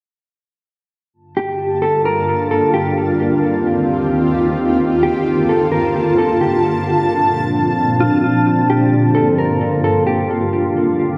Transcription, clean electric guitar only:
1.37 1.80 G4 medium
1.82 2.04 A4 medium
2.05 2.48 A#4 medium
2.51 2.73 A4 medium
2.74 2.96 G4 medium
5.03 5.46 G4 medium
5.49 5.71 A4 medium
5.72 6.15 A#4 medium
6.18 6.40 A4 medium
6.41 6.62 G4 medium
8.00 8.22 F4 medium
8.24 8.46 F4 medium
8.70 9.13 G4 medium
9.15 9.37 A4 medium
9.38 9.81 A#4 medium
9.84 10.06 A4 medium
10.07 10.28 G4 medium

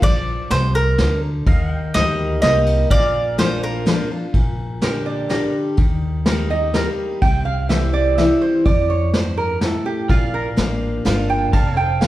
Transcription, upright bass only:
0.02 0.38 A#1 medium
0.50 0.91 C2 medium
0.99 1.40 D2 medium
1.47 1.82 D#2 medium
1.95 2.36 D2 medium
2.43 2.84 C2 loud
2.91 3.96 A#1 medium
4.34 5.40 A#1 medium
5.78 6.84 D#2 medium
7.22 8.28 C2 medium
8.66 9.71 F2 medium
10.09 10.45 A#1 medium
10.58 10.98 A1 medium
11.06 11.46 G1 medium
11.54 12.07 F1 medium

